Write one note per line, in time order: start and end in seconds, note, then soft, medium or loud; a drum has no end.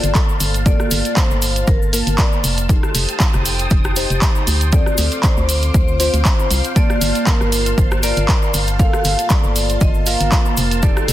0.00 0.13 G1 medium
0.00 0.63 A#3 medium
0.00 0.63 F4 medium
0.00 0.63 A4 loud
0.00 11.13 C5 medium
0.00 0.11 D5 loud
0.00 2.65 F5 medium
0.00 4.69 A5 medium
0.00 11.13 C6 medium
0.00 closed hi-hat medium
0.00 cabasa soft
0.15 0.51 A4 medium
0.15 kick loud
0.15 clap loud
0.15 closed hi-hat medium
0.15 cabasa soft
0.29 cabasa soft
0.40 0.75 G1 medium
0.40 open hi-hat medium
0.40 cabasa medium
0.54 closed hi-hat medium
0.54 cabasa soft
0.65 1.90 A#3 loud
0.65 1.90 F4 medium
0.65 1.90 A4 loud
0.65 1.13 D5 loud
0.65 kick loud
0.65 closed hi-hat medium
0.65 cabasa medium
0.80 cross-stick medium
0.80 cabasa soft
0.91 1.02 G1 loud
0.91 open hi-hat loud
0.91 cabasa loud
1.05 closed hi-hat soft
1.05 cabasa soft
1.16 1.69 C5 medium
1.16 kick loud
1.16 clap loud
1.16 closed hi-hat medium
1.16 cabasa medium
1.31 1.64 G1 loud
1.31 cabasa soft
1.42 open hi-hat medium
1.42 cabasa medium
1.56 closed hi-hat medium
1.56 cabasa soft
1.67 2.02 G1 medium
1.67 2.20 A#4 medium
1.67 kick loud
1.67 closed hi-hat medium
1.67 cabasa medium
1.82 cabasa soft
1.93 2.66 A#3 medium
1.93 2.66 F4 medium
1.93 2.67 A#4 loud
1.93 open hi-hat loud
1.93 cabasa loud
2.07 2.16 G1 medium
2.07 closed hi-hat medium
2.07 cabasa soft
2.18 2.55 D5 medium
2.18 kick loud
2.18 clap loud
2.18 closed hi-hat medium
2.18 cabasa medium
2.32 cabasa soft
2.44 2.79 F1 medium
2.44 open hi-hat medium
2.44 cabasa medium
2.58 closed hi-hat medium
2.58 cabasa soft
2.69 3.93 D#4 loud
2.69 3.94 G4 medium
2.69 3.94 A4 loud
2.69 4.71 G5 medium
2.69 4.71 D#6 medium
2.69 kick loud
2.69 closed hi-hat medium
2.69 cabasa medium
2.83 cross-stick medium
2.83 cabasa soft
2.95 3.06 F1 loud
2.95 open hi-hat loud
2.95 cabasa medium
3.09 closed hi-hat soft
3.09 cabasa soft
3.20 kick loud
3.20 clap loud
3.20 closed hi-hat medium
3.20 cabasa medium
3.33 3.67 F1 loud
3.33 cross-stick medium
3.33 cabasa soft
3.46 open hi-hat medium
3.46 cabasa medium
3.59 closed hi-hat soft
3.59 cabasa soft
3.70 4.06 F1 medium
3.70 kick loud
3.70 closed hi-hat medium
3.70 cabasa medium
3.84 cross-stick medium
3.84 cabasa soft
3.96 4.70 D#4 medium
3.96 4.70 G4 medium
3.96 4.70 C5 loud
3.96 open hi-hat loud
3.96 cabasa medium
4.10 4.19 F1 medium
4.10 closed hi-hat soft
4.10 cabasa soft
4.22 kick loud
4.22 clap loud
4.22 closed hi-hat medium
4.22 cabasa medium
4.35 cabasa soft
4.47 4.82 D2 medium
4.47 open hi-hat loud
4.47 cabasa medium
4.61 closed hi-hat soft
4.61 cabasa soft
4.72 5.97 C4 loud
4.72 5.97 F4 medium
4.72 5.97 A4 loud
4.72 6.74 C5 medium
4.72 5.17 D5 loud
4.72 10.79 F5 medium
4.72 6.74 D6 medium
4.72 kick loud
4.72 closed hi-hat medium
4.72 cabasa medium
4.86 cross-stick medium
4.86 cabasa soft
4.98 5.09 D2 loud
4.98 open hi-hat loud
4.98 cabasa loud
5.11 closed hi-hat soft
5.11 cabasa soft
5.18 5.24 D5 medium
5.23 5.47 C5 medium
5.23 kick loud
5.23 clap loud
5.23 closed hi-hat medium
5.23 cabasa soft
5.37 5.71 D2 loud
5.37 cabasa soft
5.49 6.47 C5 medium
5.49 open hi-hat medium
5.49 cabasa medium
5.62 closed hi-hat soft
5.62 cabasa soft
5.74 6.09 D2 medium
5.74 kick loud
5.74 closed hi-hat medium
5.74 cabasa medium
5.88 cabasa soft
5.99 6.73 C4 medium
5.99 6.73 F4 medium
5.99 6.73 C5 loud
5.99 open hi-hat loud
5.99 cabasa medium
6.14 6.23 D2 medium
6.14 closed hi-hat soft
6.14 cabasa soft
6.25 kick loud
6.25 clap loud
6.25 closed hi-hat medium
6.25 cabasa medium
6.39 cabasa soft
6.51 6.62 C2 medium
6.51 open hi-hat loud
6.51 cabasa medium
6.64 closed hi-hat soft
6.64 cabasa soft
6.76 8.00 A#3 loud
6.76 8.00 F4 medium
6.76 7.23 D5 loud
6.76 11.13 A5 medium
6.76 8.01 A5 loud
6.76 kick loud
6.76 closed hi-hat medium
6.76 cabasa soft
6.90 cross-stick medium
6.90 cabasa soft
7.01 7.13 G1 loud
7.01 open hi-hat loud
7.01 cabasa medium
7.15 closed hi-hat soft
7.15 cabasa soft
7.27 7.79 A#4 medium
7.27 kick loud
7.27 clap loud
7.27 closed hi-hat medium
7.27 cabasa medium
7.41 7.74 G1 loud
7.41 cross-stick medium
7.41 cabasa soft
7.52 open hi-hat medium
7.52 cabasa medium
7.66 closed hi-hat soft
7.66 cabasa soft
7.78 8.12 G1 medium
7.78 7.89 C5 loud
7.78 kick loud
7.78 closed hi-hat medium
7.78 cabasa medium
7.91 cross-stick medium
7.91 cabasa soft
8.03 8.76 A#3 medium
8.03 8.77 F4 medium
8.03 8.77 A#4 loud
8.03 8.50 D5 medium
8.03 open hi-hat loud
8.03 cabasa medium
8.17 8.26 G1 medium
8.17 closed hi-hat soft
8.17 cabasa soft
8.28 kick loud
8.28 clap loud
8.28 closed hi-hat medium
8.28 cabasa soft
8.42 cabasa soft
8.54 8.89 G1 medium
8.54 open hi-hat medium
8.54 cabasa loud
8.67 closed hi-hat soft
8.67 cabasa soft
8.79 10.04 A#3 loud
8.79 10.04 F4 medium
8.79 10.04 A4 loud
8.79 9.27 F5 loud
8.79 kick loud
8.79 closed hi-hat medium
8.79 cabasa medium
8.93 cross-stick medium
8.93 cabasa soft
9.04 9.16 G1 loud
9.04 open hi-hat loud
9.04 cabasa medium
9.19 closed hi-hat soft
9.19 cabasa soft
9.30 9.83 D5 medium
9.30 kick loud
9.30 clap loud
9.30 closed hi-hat medium
9.30 cabasa soft
9.44 9.77 G1 loud
9.44 cabasa soft
9.56 open hi-hat medium
9.56 cabasa medium
9.69 closed hi-hat medium
9.69 cabasa soft
9.81 10.16 G1 medium
9.81 10.07 D#5 loud
9.81 kick loud
9.81 closed hi-hat medium
9.81 cabasa soft
9.94 cabasa soft
10.06 10.80 A#3 medium
10.06 10.80 F4 medium
10.06 10.80 A#4 loud
10.06 10.54 F5 medium
10.06 open hi-hat loud
10.06 cabasa medium
10.20 10.30 G1 medium
10.20 closed hi-hat soft
10.20 cabasa soft
10.32 kick loud
10.32 clap loud
10.32 closed hi-hat medium
10.32 cabasa medium
10.46 cabasa soft
10.57 10.92 F1 medium
10.57 open hi-hat medium
10.57 cabasa medium
10.71 closed hi-hat medium
10.71 cabasa soft
10.82 11.13 D#4 loud
10.82 11.13 G4 medium
10.82 11.13 A4 loud
10.82 11.13 D5 medium
10.82 11.13 G5 medium
10.82 11.13 C6 medium
10.82 kick loud
10.82 closed hi-hat medium
10.82 cabasa soft
10.97 cross-stick medium
10.97 cabasa soft
11.08 11.13 F1 loud
11.08 open hi-hat loud
11.08 cabasa medium